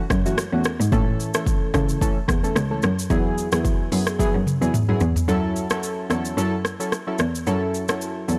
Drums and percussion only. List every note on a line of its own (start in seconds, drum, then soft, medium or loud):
0.10 kick medium
0.10 cross-stick loud
0.10 shaker medium
0.26 shaker medium
0.38 cross-stick loud
0.38 shaker medium
0.64 cross-stick loud
0.64 shaker medium
0.81 shaker medium
0.92 kick loud
0.92 shaker medium
1.20 shaker medium
1.34 cross-stick loud
1.34 shaker medium
1.47 kick medium
1.47 shaker medium
1.74 kick loud
1.74 cross-stick medium
1.74 shaker medium
1.89 shaker medium
2.01 kick medium
2.01 shaker medium
2.28 kick medium
2.28 cross-stick loud
2.28 shaker medium
2.44 shaker medium
2.56 cross-stick loud
2.56 shaker medium
2.82 cross-stick loud
2.82 shaker medium
2.99 shaker medium
3.10 kick loud
3.10 shaker medium
3.38 shaker medium
3.52 cross-stick loud
3.52 shaker medium
3.65 kick medium
3.65 shaker medium
3.92 open hi-hat medium
3.92 shaker medium
4.07 cross-stick medium
4.07 shaker medium
4.19 kick medium
4.19 high tom medium
4.19 shaker medium
4.47 mid tom medium
4.47 shaker medium
4.62 shaker medium
4.74 mid tom medium
4.74 shaker medium
4.89 mid tom medium
5.00 floor tom loud
5.00 shaker medium
5.16 floor tom medium
5.16 shaker medium
5.28 shaker medium
5.56 shaker medium
5.70 cross-stick loud
5.70 shaker medium
5.83 shaker medium
6.10 cross-stick medium
6.10 shaker medium
6.25 shaker medium
6.38 shaker medium
6.65 cross-stick medium
6.65 shaker medium
6.80 shaker medium
6.92 cross-stick medium
6.92 shaker medium
7.18 cross-stick loud
7.18 shaker medium
7.35 shaker medium
7.47 shaker medium
7.74 shaker soft
7.88 cross-stick loud
7.88 shaker medium
8.01 shaker medium
8.29 shaker medium